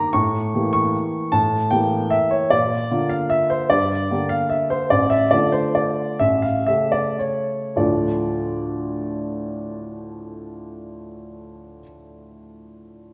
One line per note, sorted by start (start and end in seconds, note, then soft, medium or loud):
0.00 0.10 A#3 soft
0.00 0.10 G4 soft
0.00 0.13 A#5 medium
0.13 0.52 A2 medium
0.13 0.71 C#6 medium
0.55 1.29 E3 soft
0.55 1.30 A#3 soft
0.55 1.30 G4 soft
0.73 1.32 C#6 medium
1.32 1.70 A2 medium
1.32 1.71 A5 medium
1.71 2.47 E3 soft
1.71 2.48 A#3 soft
1.71 2.48 G4 soft
1.71 2.12 G5 medium
2.10 2.31 E5 medium
2.31 2.51 C#5 medium
2.50 2.89 A#2 soft
2.50 3.10 D5 medium
2.91 3.67 D3 soft
2.91 3.67 A#3 soft
2.91 3.67 F4 soft
3.09 3.30 F5 medium
3.30 3.50 E5 medium
3.50 3.70 C5 medium
3.70 4.08 G2 soft
3.70 4.29 D5 medium
4.11 4.87 D3 soft
4.11 4.87 A#3 soft
4.11 4.87 G4 soft
4.29 4.50 F5 medium
4.50 4.70 E5 medium
4.70 4.90 C5 medium
4.90 5.30 A1 soft
4.90 5.10 D5 medium
5.10 5.31 E5 medium
5.31 6.16 D3 soft
5.31 6.16 A3 soft
5.31 6.16 F4 soft
5.31 5.52 D5 medium
5.52 5.74 C5 medium
5.75 6.19 D5 medium
6.19 6.65 A1 soft
6.19 6.42 E5 medium
6.42 6.66 F5 medium
6.67 7.74 C#3 soft
6.67 7.75 A3 soft
6.67 7.75 G4 soft
6.67 6.92 E5 medium
6.92 7.20 D5 medium
7.19 7.77 C#5 medium
7.76 11.80 D2 soft
7.76 11.80 A2 soft
7.76 11.80 F3 soft
7.76 11.81 A3 soft
7.76 11.81 D4 soft
7.76 11.81 F4 soft
7.76 11.80 D5 soft